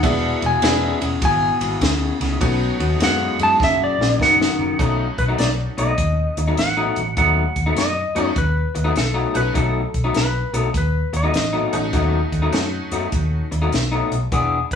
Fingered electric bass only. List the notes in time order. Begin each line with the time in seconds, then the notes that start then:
0.03 E1
0.42 E1
0.62 E1
1.02 E1
1.22 G#1
1.61 G#1
1.82 D2
2.20 C#2
2.41 B1
2.80 D#2
3.00 F#2
3.39 F#2
3.60 F#1
3.98 A#1
4.20 F#1
4.59 F#1
4.79 B1
5.18 B1
5.38 B1
5.78 B1
5.98 D#2
6.37 D#2
6.58 A1
6.97 A1
7.17 D#2
7.56 D#2
7.77 F#2
8.16 F#2
8.36 D#2
8.76 D#2
8.96 B1
9.35 B1
9.55 B1
9.94 B1
10.15 B1
10.53 B1
10.74 D#2
11.13 D#2
11.34 A1
11.73 A1
11.93 D#2
12.32 D#2
12.53 F#2
12.91 F#2
13.13 D#2
13.52 D#2
13.72 B1
14.11 B1
14.32 E1
14.71 E1